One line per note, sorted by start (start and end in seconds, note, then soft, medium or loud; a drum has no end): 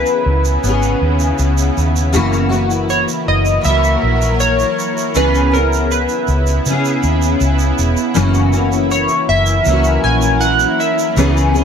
0.00 2.11 C#3 medium
0.00 0.62 B3 soft
0.00 2.11 B3 medium
0.00 0.66 C#4 medium
0.00 11.64 E4 loud
0.00 0.62 G#4 medium
0.00 1.36 B4 medium
0.06 shaker soft
0.26 0.56 C#2 loud
0.45 shaker medium
0.63 0.94 G#1 medium
0.63 2.14 B3 medium
0.63 2.14 C#4 medium
0.63 shaker medium
0.69 2.15 G#4 medium
0.82 shaker soft
1.01 1.31 D#2 medium
1.20 shaker medium
1.38 1.69 C#2 medium
1.38 shaker medium
1.58 shaker medium
1.77 2.17 D#2 medium
1.77 shaker medium
1.96 shaker medium
2.13 3.05 F#1 loud
2.13 2.51 F#2 medium
2.13 2.51 C#3 loud
2.13 2.51 E3 medium
2.13 5.12 F#3 medium
2.13 2.51 A#3 loud
2.13 2.49 E4 loud
2.13 2.48 F#4 loud
2.13 5.12 A#4 loud
2.13 shaker medium
2.33 shaker soft
2.49 3.61 E3 soft
2.49 3.63 A#3 medium
2.49 3.66 E4 medium
2.49 3.63 F#4 medium
2.49 shaker soft
2.71 shaker soft
2.90 3.04 C#5 loud
2.90 shaker medium
3.08 shaker soft
3.28 3.58 F#1 loud
3.28 3.66 D#5 loud
3.45 shaker medium
3.61 5.15 E3 medium
3.61 5.15 A#3 medium
3.61 4.36 E5 loud
3.61 shaker medium
3.65 3.95 C#2 medium
3.65 5.16 E4 medium
3.69 5.16 F#4 medium
3.84 shaker soft
4.03 4.63 A#1 loud
4.22 shaker medium
4.40 5.18 C#5 loud
4.40 shaker medium
4.59 shaker soft
4.79 shaker soft
4.98 shaker medium
5.14 6.06 C#2 loud
5.14 5.52 C#3 medium
5.14 8.13 C#3 medium
5.14 5.53 E3 medium
5.14 8.13 B3 medium
5.14 5.53 B3 medium
5.14 5.53 C#4 loud
5.14 5.50 G#4 medium
5.14 5.55 B4 loud
5.14 shaker medium
5.35 shaker soft
5.51 6.65 B3 soft
5.51 6.69 C#4 medium
5.51 6.65 G#4 medium
5.51 5.92 A#4 medium
5.51 shaker soft
5.73 shaker soft
5.91 6.62 B4 medium
5.91 shaker medium
6.09 shaker soft
6.28 6.58 C#2 loud
6.28 shaker soft
6.47 shaker medium
6.66 6.96 C#3 loud
6.66 8.16 B3 medium
6.66 8.16 C#4 medium
6.66 shaker medium
6.71 8.17 G#4 medium
6.85 shaker soft
7.03 7.34 D#2 medium
7.03 shaker soft
7.22 shaker medium
7.41 7.71 C#2 medium
7.41 shaker medium
7.59 shaker medium
7.78 7.94 E1 medium
7.78 shaker soft
7.97 shaker medium
8.14 9.06 F#1 loud
8.14 8.53 F#2 medium
8.14 8.53 C#3 medium
8.14 8.54 E3 medium
8.14 11.14 F#3 medium
8.14 8.54 A#3 medium
8.14 8.53 C#4 medium
8.14 8.51 F#4 loud
8.14 11.14 A#4 medium
8.14 shaker medium
8.34 shaker soft
8.52 9.66 A#3 medium
8.52 9.69 C#4 medium
8.52 9.66 F#4 medium
8.52 shaker soft
8.57 9.63 E3 medium
8.72 shaker soft
8.91 9.26 C#5 medium
8.91 shaker medium
9.08 shaker soft
9.29 9.59 F#1 medium
9.29 10.00 E5 loud
9.46 shaker medium
9.64 9.97 C#2 loud
9.64 11.17 E3 medium
9.64 11.17 A#3 medium
9.64 shaker medium
9.69 11.18 C#4 medium
9.69 11.19 F#4 medium
9.84 shaker soft
10.04 10.64 A#1 medium
10.04 10.43 G#5 loud
10.22 shaker medium
10.41 10.80 F#5 loud
10.41 shaker medium
10.59 shaker soft
10.80 11.15 E5 medium
10.80 shaker soft
10.99 shaker medium
11.16 11.64 C#2 loud
11.16 11.54 C#3 medium
11.16 11.64 C#3 medium
11.16 11.55 E3 medium
11.16 11.64 B3 medium
11.16 11.55 B3 medium
11.16 11.55 C#4 medium
11.16 11.53 G#4 medium
11.16 shaker medium
11.37 shaker soft
11.54 11.64 C#4 medium
11.54 11.64 G#4 medium
11.54 shaker soft
11.58 11.64 B3 medium